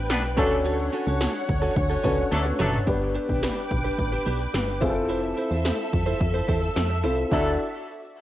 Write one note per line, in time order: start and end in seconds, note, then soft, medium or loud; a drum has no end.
0.00 0.11 A1 medium
0.00 0.33 B3 medium
0.00 0.33 D4 medium
0.00 0.33 G4 medium
0.00 0.34 B4 medium
0.00 0.35 B4 medium
0.00 0.34 D5 medium
0.00 0.35 G5 medium
0.09 0.39 B1 loud
0.09 0.21 G3 medium
0.09 0.21 B3 medium
0.09 0.21 D4 medium
0.09 0.21 B4 medium
0.09 muted clean electric guitar stroke medium
0.09 snare loud
0.09 closed hi-hat medium
0.09 tambourine medium
0.23 muted clean electric guitar stroke soft
0.23 closed hi-hat medium
0.36 0.90 D2 loud
0.36 0.55 F#3 medium
0.36 0.55 A3 medium
0.36 2.00 C#4 medium
0.36 0.55 C#4 medium
0.36 2.01 D4 medium
0.36 0.55 D4 medium
0.36 2.01 F#4 medium
0.36 0.51 F#4 medium
0.36 0.55 A4 loud
0.36 2.01 A4 medium
0.36 0.50 A4 loud
0.36 2.85 C#5 medium
0.36 2.01 C#5 medium
0.36 2.85 F#5 medium
0.36 kick loud
0.36 open hi-hat medium
0.51 muted clean electric guitar stroke soft
0.51 closed hi-hat medium
0.65 0.83 C#4 medium
0.65 0.79 F#4 medium
0.65 0.78 A4 medium
0.65 closed hi-hat loud
0.79 muted clean electric guitar stroke medium
0.79 closed hi-hat medium
0.93 1.07 C#4 medium
0.93 1.06 F#4 medium
0.93 1.05 A4 medium
0.93 closed hi-hat medium
1.07 1.28 C#2 medium
1.07 1.19 C#4 medium
1.07 1.20 F#4 medium
1.07 1.21 A4 medium
1.07 closed hi-hat medium
1.21 1.39 C#4 medium
1.21 1.34 F#4 loud
1.21 1.33 A4 loud
1.21 snare loud
1.21 closed hi-hat medium
1.21 tambourine medium
1.34 muted clean electric guitar stroke soft
1.34 closed hi-hat medium
1.48 1.70 D2 medium
1.48 muted clean electric guitar stroke soft
1.48 kick medium
1.48 closed hi-hat medium
1.62 1.75 C#4 medium
1.62 1.75 F#4 medium
1.62 1.76 A4 medium
1.62 closed hi-hat soft
1.76 1.97 D2 medium
1.76 muted clean electric guitar stroke medium
1.76 kick loud
1.76 closed hi-hat medium
1.90 2.02 C#4 soft
1.90 2.03 F#4 medium
1.90 2.04 A4 medium
1.90 closed hi-hat medium
2.04 2.25 C#2 medium
2.04 2.87 C#4 medium
2.04 2.22 C#4 medium
2.04 2.86 D4 soft
2.04 2.87 F#4 medium
2.04 2.17 F#4 medium
2.04 2.88 A4 medium
2.04 2.16 A4 loud
2.04 2.87 B4 medium
2.04 kick medium
2.04 closed hi-hat medium
2.17 muted clean electric guitar stroke soft
2.17 closed hi-hat medium
2.32 2.53 D2 loud
2.32 2.44 F#3 medium
2.32 2.44 A3 medium
2.32 2.44 D4 medium
2.32 2.44 A4 medium
2.32 muted clean electric guitar stroke soft
2.32 snare medium
2.32 closed hi-hat medium
2.46 muted clean electric guitar stroke medium
2.46 closed hi-hat medium
2.46 high tom medium
2.59 2.80 F#1 loud
2.59 2.77 F#3 medium
2.59 2.77 A3 medium
2.59 2.78 C#4 medium
2.59 2.77 D4 medium
2.59 2.73 F#4 medium
2.59 2.77 A4 medium
2.59 2.72 A4 medium
2.59 mid tom medium
2.59 open hi-hat medium
2.73 muted clean electric guitar stroke soft
2.73 closed hi-hat medium
2.73 floor tom loud
2.86 3.19 G1 loud
2.86 4.77 B3 medium
2.86 3.05 D4 medium
2.86 4.78 D4 medium
2.86 4.78 G4 medium
2.86 3.01 G4 medium
2.86 4.80 B4 medium
2.86 3.00 B4 medium
2.86 4.79 B4 medium
2.86 4.80 G5 medium
2.86 4.80 D6 medium
2.86 kick loud
2.86 closed hi-hat medium
3.01 muted clean electric guitar stroke soft
3.01 closed hi-hat soft
3.15 3.29 D4 medium
3.15 3.28 G4 medium
3.15 3.27 B4 medium
3.15 closed hi-hat medium
3.29 3.50 B1 medium
3.29 3.41 D4 medium
3.29 3.42 G4 medium
3.29 3.43 B4 medium
3.29 kick medium
3.29 closed hi-hat medium
3.43 3.61 D4 medium
3.43 3.56 G4 medium
3.43 3.55 B4 medium
3.43 snare loud
3.43 closed hi-hat medium
3.56 muted clean electric guitar stroke soft
3.56 closed hi-hat medium
3.70 3.92 B1 medium
3.70 muted clean electric guitar stroke soft
3.70 kick medium
3.70 closed hi-hat medium
3.84 3.97 D4 medium
3.84 3.98 G4 medium
3.84 3.98 B4 medium
3.84 closed hi-hat soft
3.98 4.19 A1 medium
3.98 muted clean electric guitar stroke soft
3.98 kick medium
3.98 closed hi-hat medium
4.12 4.25 D4 soft
4.12 4.26 G4 soft
4.12 4.26 B4 medium
4.12 closed hi-hat medium
4.26 4.47 B1 loud
4.26 4.44 D4 medium
4.26 4.40 G4 medium
4.26 4.39 B4 loud
4.26 closed hi-hat medium
4.40 muted clean electric guitar stroke soft
4.40 closed hi-hat medium
4.54 4.83 G1 loud
4.54 muted clean electric guitar stroke soft
4.54 snare loud
4.54 closed hi-hat medium
4.68 muted clean electric guitar stroke medium
4.68 closed hi-hat soft
4.81 5.34 F1 loud
4.81 6.99 C4 medium
4.81 5.00 E4 medium
4.81 7.00 E4 medium
4.81 7.00 F4 medium
4.81 4.89 G#4 medium
4.81 4.95 A4 medium
4.81 7.30 A4 medium
4.81 4.94 C5 loud
4.81 7.30 E5 medium
4.81 7.29 E6 medium
4.81 kick loud
4.81 open hi-hat medium
4.89 7.03 A4 medium
4.95 muted clean electric guitar stroke soft
4.95 closed hi-hat medium
5.09 5.27 E4 medium
5.09 5.23 A4 medium
5.09 5.22 C5 loud
5.09 closed hi-hat medium
5.23 muted clean electric guitar stroke soft
5.23 closed hi-hat soft
5.37 5.51 E4 medium
5.37 5.50 A4 medium
5.37 5.50 C5 medium
5.37 closed hi-hat medium
5.51 5.72 E2 medium
5.51 5.63 E4 soft
5.51 5.64 A4 medium
5.51 5.65 C5 medium
5.51 closed hi-hat medium
5.65 5.83 E4 medium
5.65 5.79 A4 medium
5.65 5.77 C5 medium
5.65 snare loud
5.65 closed hi-hat medium
5.65 tambourine medium
5.79 muted clean electric guitar stroke soft
5.79 closed hi-hat medium
5.92 6.14 F2 medium
5.92 muted clean electric guitar stroke soft
5.92 kick medium
5.92 closed hi-hat medium
6.06 6.19 E4 soft
6.06 6.20 A4 medium
6.06 6.20 C5 medium
6.06 closed hi-hat soft
6.21 6.42 F2 medium
6.21 kick medium
6.21 closed hi-hat medium
6.34 6.47 E4 soft
6.34 6.47 A4 medium
6.34 6.48 C5 medium
6.34 closed hi-hat medium
6.48 6.69 E2 medium
6.48 6.66 E4 medium
6.48 6.62 A4 medium
6.48 6.61 C5 medium
6.48 kick medium
6.48 closed hi-hat medium
6.62 muted clean electric guitar stroke soft
6.62 closed hi-hat medium
6.76 7.05 F2 medium
6.76 muted clean electric guitar stroke soft
6.76 snare loud
6.76 closed hi-hat medium
6.76 tambourine medium
6.90 muted clean electric guitar stroke soft
6.90 closed hi-hat medium
7.03 7.25 C2 loud
7.03 7.32 C4 medium
7.03 7.22 E4 medium
7.03 7.30 E4 medium
7.03 7.32 F4 medium
7.03 7.18 A4 medium
7.03 7.30 A4 medium
7.03 7.16 C5 medium
7.03 open hi-hat medium
7.18 muted clean electric guitar stroke soft
7.18 closed hi-hat medium
7.31 7.58 D2 medium
7.31 7.51 F#3 medium
7.31 7.51 A3 medium
7.31 7.58 D4 medium
7.31 7.58 E4 medium
7.31 7.51 E4 medium
7.31 7.48 F#4 medium
7.31 7.58 F#4 medium
7.31 7.58 A4 medium
7.31 7.51 A4 loud
7.31 7.49 A4 medium
7.31 7.58 D5 medium
7.31 7.58 E5 medium
7.31 7.49 E5 loud
7.31 kick loud